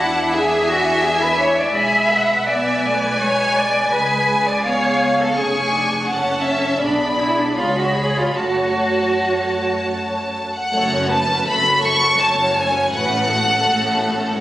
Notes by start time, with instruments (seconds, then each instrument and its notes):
Already playing: double bass section E2, viola section D4 E4, cello section E4, violin section F#5 A5
0.32 cello section G#4, violin section E5 G#5
0.68 cello section F#4
1.03 cello section G#4
1.22 cello section B4
1.39 cello section C#5
1.58 cello section D5
1.74 double bass section B1, viola section G#3 G#4, cello section E5, violin section G#5 B5
2.11 viola section B4, violin section F#5
2.46 viola section B3, cello section D5, violin section E5 G#5
2.84 viola section A3, violin section G#5
3.21 viola section G#3, cello section C#5
3.57 cello section D5
3.91 double bass section C#2, viola section G#3 G#4, cello section B4, violin section G#5
4.47 cello section D5
4.64 viola section B3 G#4, cello section C#5, violin section F5 G#5
5.20 cello section A4
5.35 double bass section F1, viola section C#4, cello section G#4, violin section G#5 C#6
5.72 viola section D4
6.07 double bass section F#1, cello section C#4, viola section C#4 A4, violin section F#5 A5
6.44 violin section E5
6.80 double bass section B1, viola section B3 G#4, cello section D4, violin section D5 B5
7.18 cello section E4
7.38 cello section D4
7.56 double bass section C#2, viola section G#3 G#4, cello section F4, violin section C#5 B5
7.77 cello section F#4
7.95 cello section G#4
8.17 cello section F4
8.35 double bass section F#2, viola section A3 F#4, cello section F#4, violin section C#5 A5
10.55 violin section F#5
10.73 double bass section F#1, cello section F#2, viola section A3 A4, violin section C#5
10.92 viola section C#4 F#4
11.10 viola section A3 A4, violin section B4 A5
11.28 viola section C#4 F#4
11.45 double bass section F#1, cello section F#2, viola section A3 A4, violin section A4 B5
11.63 viola section C#4 F#4
11.81 viola section A3 A4, violin section C#6
11.99 viola section C#4 F#4
12.18 double bass section F#1, cello section F#2, viola section A3 A4, violin section C#5 A5
12.36 viola section C#4 F#4
12.54 viola section A3 A4, violin section G#5
12.72 viola section C#4 F#4
12.91 double bass section A1, cello section A2, viola section A3 F#4, violin section B4 F#5
13.09 viola section C#4 A4
13.27 viola section A3 F#4, violin section A4
13.45 viola section C#4 A4
13.62 double bass section A1, cello section A2, viola section A3 F#4
13.80 viola section C#4 A4
13.98 viola section A3 F#4
14.16 viola section C#4 A4
14.34 double bass section A1, viola section A3 F#4, violin section C#5